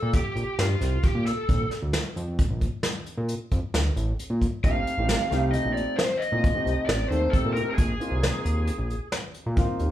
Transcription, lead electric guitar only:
Already playing: A4
0.15 G4
0.60 F4
1.04 G4
1.26 A4
4.64 F5
5.51 D#5
5.73 D5
5.97 C5
6.17 D#5
6.86 D5
7.09 C5
7.30 A4
7.53 A#4
7.70 A#4
7.75 G#4

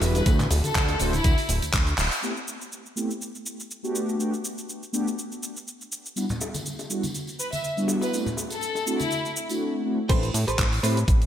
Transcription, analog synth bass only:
0.02 E1
0.26 D2
0.51 D1
0.64 D2
0.75 D2
1.00 D1
1.24 D2
1.49 D1
1.62 D2
1.73 D2
1.98 D1
10.10 A1
10.34 A2
10.48 A1
10.59 A1
10.83 A2
11.08 A1

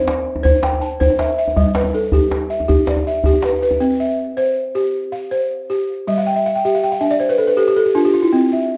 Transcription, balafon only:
Already playing: C5 D5
0.43 C5
0.63 G5
0.81 A5
1.00 C5
1.19 E5
1.38 E5
1.56 G3
1.75 B4
1.94 A4
2.13 G4
2.50 E5
2.68 G4
2.88 D5
3.07 E5
3.26 G4
3.44 B4
3.62 B4
3.80 C4
4.00 E5
4.37 C5
4.75 G4
5.12 F5
5.31 C5
5.70 G4
6.07 G3 E5
6.18 F5
6.27 G5
6.36 E5
6.46 F5
6.55 G5
6.65 G4 E5
6.75 F5
6.83 G5
6.92 F5
7.01 D4 E5
7.11 D5
7.20 C5
7.29 B4
7.38 A4
7.47 B4
7.57 G4 A4
7.68 G4
7.77 A4
7.86 G4
7.95 D4 F4
8.05 G4
8.14 F4
8.22 E4
8.33 C4
8.53 E5

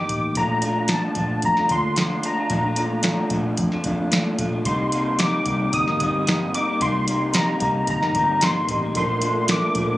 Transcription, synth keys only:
Already playing: D6
0.37 A#5
0.92 A5
1.45 A#5
1.72 C6
2.26 A#5
4.66 C6
5.19 D6
5.74 D#6
6.55 D6
6.82 C6
7.36 A#5
7.90 A#5
8.44 C6
8.97 C6
9.51 D6

